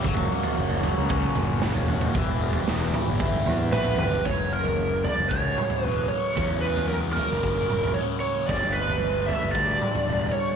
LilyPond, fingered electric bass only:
\new Staff \with { instrumentName = "Fingered electric bass" } { \clef bass \time 4/4 \tempo 4 = 114 fis,,8 r8 fis,,8. cis,8. fis,,8. e,,8. | e,,4 e,,8 r16 g,,8. e,8 ais,,8 g,,8 | fis,,4.~ fis,,16 fis,,16 cis,8 r8 e,,8 r8 | e,4.~ e,16 fis,,16 fis,,8 fis,,8 r4 |
g,,4.~ g,,16 g,,16 d,8 r8 e,,8 r8 | }